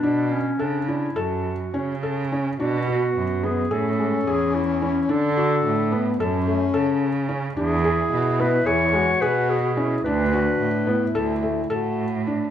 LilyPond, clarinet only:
\new Staff \with { instrumentName = "Clarinet" } { \time 9/8 \key d \lydian \tempo 4. = 72 d'8 cis'8 d'8 e'8 fis'4. r4 | fis'4. gis'8 a'4 gis'8 e'4 | a'2 r2 r8 | gis'4. b'8 cis''4 b'8 gis'4 |
b'2 r2 r8 | }